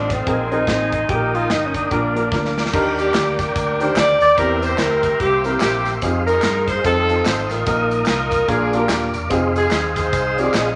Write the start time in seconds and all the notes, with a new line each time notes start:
Already playing: A1 D#3 F3 A3 C4 D4 A4 D#5 F5 C6
0.10 C4, kick, snare, closed hi-hat
0.27 A#1 A#2 D#3 G#3 A#3 C4 D#4 G#4 A#4 G#5, kick, closed hi-hat
0.52 C4 D#4 G#4 A#4, closed hi-hat
0.67 A1 C4 G#4 C5, kick, snare, closed hi-hat
0.92 kick, closed hi-hat
1.08 A#1 A#2 G3 A#3 D#4 G4 G#4 G5 D#6, kick, closed hi-hat
1.15 A#4
1.35 F4, closed hi-hat
1.50 G1 D#4, snare, closed hi-hat
1.66 C#4
1.74 D4, kick, closed hi-hat
1.90 A#1 A#2 D3 F3 A#3 D4 F4 A#4 D5 F5 D6, kick, closed hi-hat
2.15 A#3 D4 F4 A#4, closed hi-hat
2.31 D2 A#3 D4 F4 A#4, kick, snare
2.45 snare
2.58 snare
2.66 snare
2.71 D#2 D#3 D4 D#4 G4 A#4 D5 G5 D6, kick, crash, tambourine
2.99 A#3 D4 G4, closed hi-hat, tambourine
3.14 D2, snare, clap, closed hi-hat, tambourine
3.39 D4 G4 A#4, kick, snare, closed hi-hat, tambourine
3.56 D2, kick, closed hi-hat, tambourine
3.79 D#3 D4 G4 A#4 C5, closed hi-hat, tambourine
3.96 D2 D5, snare, clap, closed hi-hat, tambourine
4.21 D#2 D5, snare, closed hi-hat, tambourine
4.38 E2 E3 C4 E4 G4 A#4 E5 C6, kick, closed hi-hat, tambourine
4.62 C5, closed hi-hat, tambourine
4.78 D2 G4 A#4, snare, clap, closed hi-hat, tambourine
5.03 kick, closed hi-hat, tambourine
5.20 C2 A#3 C4 G4, kick, closed hi-hat, tambourine
5.44 C4 E4 G4 A#4, closed hi-hat, tambourine
5.60 A#1 A#3 C4 G4, snare, clap, closed hi-hat, tambourine
5.85 snare, closed hi-hat, tambourine
6.02 F2 C4 D#4 F4 G#4 D#5 F5, kick, closed hi-hat, tambourine
6.27 D#4 A#4, closed hi-hat, tambourine
6.42 G2, snare, clap, closed hi-hat, tambourine
6.68 C5, kick, snare, closed hi-hat, tambourine
6.84 F2 C4 D#4 F4 A4 D#5, kick, closed hi-hat, tambourine
7.09 C4 D#4 F4 A4, closed hi-hat, tambourine
7.25 G#1 C5, snare, clap, closed hi-hat, tambourine
7.49 A1 D#4 F4 A#4, snare, closed hi-hat, tambourine
7.66 A#1 A#2 A#3 D#4 F4 A#4 F5 D#6, kick, closed hi-hat, tambourine
7.91 closed hi-hat, tambourine
8.06 C2 D#4 F4 A#4, snare, clap, closed hi-hat, tambourine
8.31 kick, closed hi-hat, tambourine
8.48 A#1 A#2 A#3 D4 F4 G#4 A#4 D5 D6, kick, closed hi-hat, tambourine
8.73 A#3 D4 F4 G4 A4, closed hi-hat, tambourine
8.79 A#4
8.89 D#1, snare, clap, closed hi-hat, tambourine
9.13 E1, closed hi-hat, tambourine
9.30 F1 C4 D#4 F4 G#4 D#5 C6, kick, closed hi-hat, tambourine
9.56 C4 D#4 G#4, closed hi-hat, tambourine
9.71 D#2, snare, clap, closed hi-hat, tambourine
9.96 D#4 G#4 C5, kick, snare, closed hi-hat, tambourine
10.13 C2, kick, closed hi-hat, tambourine
10.38 C4 D#4 F4 G4 D5, closed hi-hat, tambourine
10.44 G#4
10.54 A#1 D#5, snare, clap, closed hi-hat, tambourine